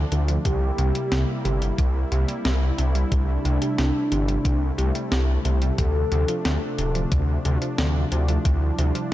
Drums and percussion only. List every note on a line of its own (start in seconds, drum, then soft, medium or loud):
0.12 closed hi-hat medium
0.28 closed hi-hat medium
0.45 kick loud
0.45 closed hi-hat medium
0.78 closed hi-hat medium
0.95 closed hi-hat medium
1.12 snare loud
1.12 closed hi-hat medium
1.45 closed hi-hat medium
1.62 closed hi-hat medium
1.78 kick loud
1.78 closed hi-hat medium
2.12 closed hi-hat medium
2.28 closed hi-hat medium
2.45 snare loud
2.45 closed hi-hat medium
2.78 closed hi-hat medium
2.95 closed hi-hat medium
3.12 kick loud
3.12 closed hi-hat medium
3.45 closed hi-hat medium
3.62 closed hi-hat medium
3.78 snare loud
3.78 closed hi-hat medium
4.12 closed hi-hat medium
4.28 closed hi-hat medium
4.45 kick loud
4.45 closed hi-hat medium
4.79 closed hi-hat medium
4.95 closed hi-hat medium
5.12 snare loud
5.12 closed hi-hat medium
5.45 closed hi-hat medium
5.62 closed hi-hat medium
5.78 kick loud
5.78 closed hi-hat medium
6.12 closed hi-hat medium
6.28 closed hi-hat medium
6.45 snare loud
6.45 closed hi-hat medium
6.78 closed hi-hat medium
6.95 closed hi-hat medium
7.12 kick loud
7.12 closed hi-hat medium
7.45 closed hi-hat medium
7.62 closed hi-hat medium
7.78 snare loud
7.78 closed hi-hat medium
8.12 closed hi-hat medium
8.28 closed hi-hat medium
8.45 kick loud
8.45 closed hi-hat medium
8.79 closed hi-hat medium
8.95 closed hi-hat medium